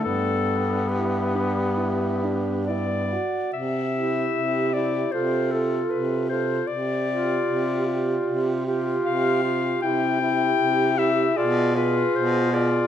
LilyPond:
<<
  \new Staff \with { instrumentName = "Clarinet" } { \time 4/4 \key g \major \tempo 4 = 76 a'4 g'2 d''4 | \key c \major e''4. d''8 c''8 a'8 b'8 c''8 | d''2~ d''8 r8 f''4 | g''4. e''8 d''8 b'8 c''8 d''8 | }
  \new Staff \with { instrumentName = "Alto saxophone" } { \time 4/4 \key g \major d'4 e'8 d'8 e'8 d'8 e'8 fis'8 | \key c \major r8 g'4 g'8 a'8 a'4 a'8 | r8 g'4 g'4 g'4 g'8 | g'8 g'4 g'8 gis'8 gis'4 gis'8 | }
  \new Staff \with { instrumentName = "Tenor saxophone" } { \time 4/4 \key g \major b2.~ b8 r8 | \key c \major r8 e'4 e'8 f'8 f'4 f'8 | r8 f'4 f'4 f'4 f'8 | e'8 e'4 e'8 f'8 f'4 f'8 | }
  \new Staff \with { instrumentName = "Baritone saxophone" } { \clef bass \time 4/4 \key g \major g,2.~ g,8 r8 | \key c \major c4 c4 c4 c4 | c4 c4 c4 c4 | c4 c4 b,4 b,4 | }
>>